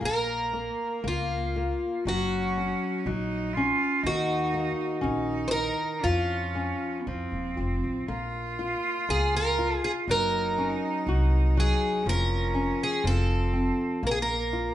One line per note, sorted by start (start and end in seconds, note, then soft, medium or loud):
0.01 0.69 A#1 medium
0.01 0.52 A#3 medium
0.01 2.01 A#3 medium
0.05 1.07 A#4 medium
0.53 1.02 A#3 soft
1.04 1.70 C#2 medium
1.04 1.53 A#3 soft
1.04 2.03 F4 medium
1.56 2.04 A#3 medium
2.05 2.70 F#1 medium
2.05 3.05 F#3 medium
2.05 3.08 C#4 medium
2.05 3.03 F#4 medium
2.58 3.05 C#4 soft
3.06 3.70 A#1 medium
3.06 3.54 F#3 soft
3.06 3.56 D#4 medium
3.55 4.04 C#4 medium
3.55 4.04 F4 loud
4.03 4.67 D#2 medium
4.03 5.51 D#3 medium
4.03 5.01 D#4 loud
4.03 5.47 F#4 medium
4.54 5.01 A#3 soft
5.01 5.69 A#1 medium
5.01 5.50 C#4 medium
5.01 6.04 D#4 loud
5.48 6.04 A#4 medium
5.48 5.51 C5 medium
5.53 6.02 D#3 medium
6.02 6.71 F2 medium
6.02 7.03 F3 medium
6.02 7.01 C#4 medium
6.02 7.54 F4 medium
6.55 7.05 C#4 soft
7.00 7.09 B3 medium
7.07 7.23 F2 medium
7.07 8.05 F3 medium
7.07 8.08 C4 medium
7.32 7.55 D#1 medium
7.57 7.81 F1 medium
7.57 8.07 C4 soft
7.84 8.06 A1 medium
8.08 8.73 A#1 medium
8.08 9.08 A#3 medium
8.08 10.04 F4 loud
8.59 9.07 F4 soft
9.09 9.73 C#2 medium
9.09 9.57 A#3 soft
9.09 9.35 G#4 medium
9.37 9.84 A#4 medium
9.59 10.07 F4 medium
9.84 9.91 G#4 medium
10.08 10.72 F#1 medium
10.08 11.56 F#3 medium
10.08 12.02 D#4 loud
10.08 11.59 A#4 loud
10.58 11.06 C#4 soft
11.07 11.71 C2 medium
11.07 11.56 F#4 medium
11.57 12.05 F#3 medium
11.57 12.09 G#4 medium
12.05 12.70 F1 medium
12.05 13.02 F3 medium
12.05 13.05 C#4 medium
12.09 12.83 A#4 medium
12.54 13.03 C#4 soft
12.83 13.05 G#4 medium
13.03 13.69 F1 medium
13.03 14.01 F3 medium
13.03 14.03 C4 medium
13.07 14.06 A4 medium
13.53 14.02 C4 medium
14.03 14.69 A#1 medium
14.03 14.74 A#3 medium
14.03 14.11 A#4 medium
14.11 14.18 G#4 medium
14.22 14.74 A#4 medium
14.53 14.74 F4 soft